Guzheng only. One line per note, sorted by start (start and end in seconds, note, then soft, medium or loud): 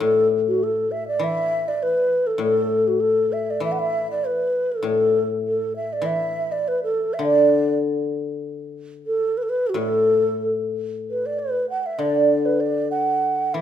0.00 1.80 A2 medium
0.00 0.62 E3 medium
1.19 3.00 E3 medium
2.38 4.24 A2 medium
3.60 5.43 E3 medium
4.83 6.61 A2 medium
6.02 7.81 E3 medium
7.19 9.02 D3 medium
9.74 11.53 A2 medium
11.99 13.61 D3 medium
13.54 13.61 E3 medium